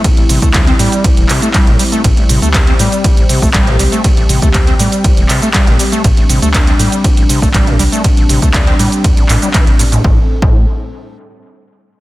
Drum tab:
RD |x---x---x---x---|x---x---x---x---|x---x---x---x---|x---x---x---x---|
HH |xxoxxxoxxxoxxxox|xxoxxxoxxxo-xxox|xxoxxxoxxxoxxxox|xxoxxxoxxxo-xxox|
SH |x-xxx-xxx-xxx-xx|x-xxx-xxx-xxx-xx|x-xxx-xxx-xxx-xx|x-xxx-xxx-xxx-xx|
CP |----x-----x-x---|----x-------x---|----x-----x-x---|----x-------x---|
BD |o--oo---o---o---|o---o---o--oo---|o--oo---o---o---|o---o---o--oo---|

RD |x---x---x---x---|----------------|
HH |xxoxxxoxxxoxxxox|----------------|
SH |x-xxx-xxx-xxx-xx|----------------|
CP |----x-----x-x---|----------------|
BD |o--oo---o---o---|o--o------------|